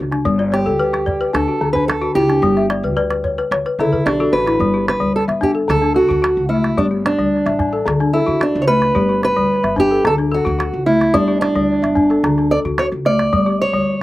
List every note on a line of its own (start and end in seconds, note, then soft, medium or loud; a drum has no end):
0.00 0.21 C#2 medium
0.00 0.12 F#4 medium
0.12 0.39 D4 medium
0.12 calabash click soft
0.25 0.68 G1 medium
0.25 0.53 G3 medium
0.25 calabash thump medium
0.39 0.80 D5 medium
0.52 1.34 G4 medium
0.52 0.93 C#5 medium
0.52 calabash click medium
0.66 1.21 D2 medium
0.66 1.07 A4 medium
0.79 1.07 B4 medium
0.93 1.34 G4 medium
0.93 calabash click medium
1.06 1.48 D5 medium
1.06 calabash thump medium
1.06 calabash click soft
1.21 1.34 B4 medium
1.33 1.45 D2 loud
1.33 1.74 D4 medium
1.33 1.72 A4 medium
1.33 calabash click medium
1.48 1.89 F#4 medium
1.61 2.05 D2 medium
1.61 1.88 D3 medium
1.73 2.16 D4 medium
1.73 1.86 B4 medium
1.73 calabash thump medium
1.88 2.15 A4 medium
1.88 calabash click medium
2.02 2.29 F#4 medium
2.15 2.37 C#2 medium
2.15 2.56 E4 medium
2.15 2.66 G4 medium
2.29 2.56 D4 medium
2.29 calabash click medium
2.42 2.85 G1 loud
2.42 2.70 G3 loud
2.42 calabash thump medium
2.57 2.82 E5 medium
2.57 calabash click soft
2.70 2.95 D5 medium
2.70 calabash click medium
2.83 3.39 D2 medium
2.83 2.95 B4 medium
2.97 3.09 B4 medium
2.97 3.22 D5 medium
3.10 3.36 B4 medium
3.10 calabash click medium
3.24 3.49 C#5 medium
3.24 calabash thump medium
3.38 3.64 B4 medium
3.38 calabash click soft
3.51 3.62 D2 medium
3.51 3.77 C#5 medium
3.51 calabash click medium
3.66 3.91 B4 medium
3.66 calabash click soft
3.79 4.03 C#2 medium
3.79 4.06 D3 medium
3.79 4.07 E4 medium
3.79 4.04 A4 medium
3.79 calabash click soft
3.93 4.18 B4 medium
3.93 calabash thump soft
4.06 4.30 B1 medium
4.06 4.34 D4 medium
4.06 4.32 G4 medium
4.06 calabash click medium
4.20 4.32 F#4 medium
4.20 4.45 A4 medium
4.33 4.57 A1 medium
4.33 4.58 F#4 medium
4.33 4.88 B4 medium
4.33 calabash click soft
4.47 4.72 E4 medium
4.47 calabash click medium
4.60 4.93 G1 medium
4.60 4.88 G3 medium
4.60 calabash thump medium
4.74 5.15 G4 medium
4.88 5.15 B4 medium
4.88 calabash click medium
5.00 5.23 D2 medium
5.00 5.28 G3 medium
5.16 5.23 A4 medium
5.28 5.61 G1 medium
5.28 5.69 E5 medium
5.28 calabash click soft
5.41 5.69 D4 medium
5.41 5.50 G4 medium
5.41 calabash thump medium
5.41 calabash click soft
5.55 5.82 A4 medium
5.68 6.02 D2 loud
5.68 5.96 D3 medium
5.68 5.95 A4 medium
5.68 calabash click medium
5.82 6.23 D4 medium
5.82 calabash click soft
5.95 6.49 F#4 medium
5.95 6.36 A4 medium
6.09 6.32 D2 medium
6.09 6.21 F#4 medium
6.09 calabash thump medium
6.22 6.64 F#4 medium
6.22 calabash click medium
6.37 6.70 C#2 medium
6.49 6.78 A3 medium
6.49 6.78 E4 medium
6.64 calabash click medium
6.77 7.12 G1 medium
6.77 7.05 G3 medium
6.77 6.85 D4 medium
6.77 6.90 G4 medium
6.77 calabash thump medium
6.91 7.32 G4 medium
7.06 8.18 D4 medium
7.06 calabash click medium
7.19 7.41 D2 medium
7.19 7.46 G3 medium
7.46 7.79 A1 medium
7.46 7.87 E5 medium
7.46 calabash click medium
7.59 7.87 D4 medium
7.59 calabash thump medium
7.59 calabash click soft
7.73 8.00 A4 medium
7.86 8.20 D2 loud
7.86 8.14 D3 medium
7.86 calabash click medium
8.00 8.41 D4 medium
8.00 calabash click soft
8.13 8.42 E4 medium
8.13 8.55 A4 medium
8.27 8.50 D2 medium
8.27 8.39 F#4 medium
8.27 calabash thump soft
8.40 8.63 D4 medium
8.40 8.82 F#4 medium
8.40 calabash click medium
8.55 8.89 C#2 medium
8.62 8.67 C#5 medium
8.67 8.96 A3 medium
8.67 9.23 B4 loud
8.82 calabash click soft
8.95 9.29 G1 medium
8.95 9.23 G3 medium
8.95 9.08 G4 medium
8.95 calabash thump medium
9.09 9.50 G4 medium
9.23 9.75 B4 medium
9.23 calabash click medium
9.36 9.59 D2 medium
9.36 9.64 G3 medium
9.63 9.97 G1 medium
9.63 10.05 E5 medium
9.63 calabash click soft
9.76 10.04 D4 medium
9.76 10.06 G4 medium
9.76 calabash thump medium
9.76 calabash click soft
9.91 10.19 A4 medium
10.05 10.38 D2 loud
10.05 10.32 D3 medium
10.05 10.14 A4 loud
10.05 calabash click medium
10.18 10.59 D4 medium
10.18 calabash click soft
10.32 10.86 F#4 medium
10.32 10.73 A4 medium
10.45 10.69 D2 medium
10.45 10.58 F#4 medium
10.45 calabash thump soft
10.59 11.00 F#4 medium
10.59 calabash click medium
10.73 11.07 C#2 medium
10.86 11.14 A3 medium
10.86 11.15 E4 medium
11.01 calabash click soft
11.14 11.47 G1 medium
11.14 11.41 G3 loud
11.14 11.39 D4 medium
11.14 11.27 G4 medium
11.14 calabash thump medium
11.28 11.69 G4 medium
11.41 12.54 D4 medium
11.41 calabash click medium
11.55 11.78 D2 medium
11.55 11.83 G3 medium
11.82 12.16 G1 medium
11.82 12.23 E5 medium
11.82 calabash click medium
11.95 12.23 D4 medium
11.95 calabash thump medium
12.10 12.37 A4 medium
12.10 calabash click soft
12.24 12.57 D2 loud
12.24 12.51 D3 medium
12.24 calabash click medium
12.38 12.78 D4 medium
12.38 calabash click soft
12.51 12.92 A4 medium
12.51 12.58 D5 medium
12.65 12.87 D2 medium
12.65 12.78 F#4 medium
12.65 calabash thump medium
12.78 13.20 F#4 medium
12.78 12.86 C#5 medium
12.78 calabash click medium
12.92 13.25 C#2 medium
12.92 calabash click soft
13.05 13.33 A3 medium
13.05 13.61 D5 medium
13.05 calabash click soft
13.19 calabash click medium
13.33 13.66 G1 medium
13.33 13.60 G3 medium
13.33 calabash thump medium
13.46 13.87 G4 medium
13.62 14.03 C#5 loud
13.73 13.96 D2 medium
13.73 14.01 G3 medium